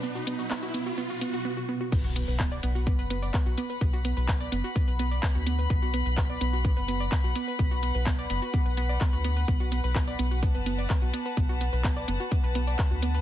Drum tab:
CC |----------------|x---------------|----------------|----------------|
HH |--x---x---x-----|--x---x---x---x-|--x---x---x---x-|--x---x---x---x-|
SH |xxxxxxxxxxxx----|xxxxxxxxxxxxxxxx|xxxxxxxxxxxxxxxx|xxxxxxxxxxxxxxxx|
CP |----x-----------|----x-------x---|----x-------x---|----x-------x---|
BD |----------------|o---o---o---o---|o---o---o---o---|o---o---o---o---|

CC |----------------|----------------|----------------|
HH |--x---x---x---x-|--x---x---x---x-|--x---x---x---x-|
SH |xxxxxxxxxxxxxxxx|xxxxxxxxxxxxxxxx|xxxxxxxxxxxxxxxx|
CP |----x-------x---|----x-------x---|----x-------x---|
BD |o---o---o---o---|o---o---o---o---|o---o---o---o---|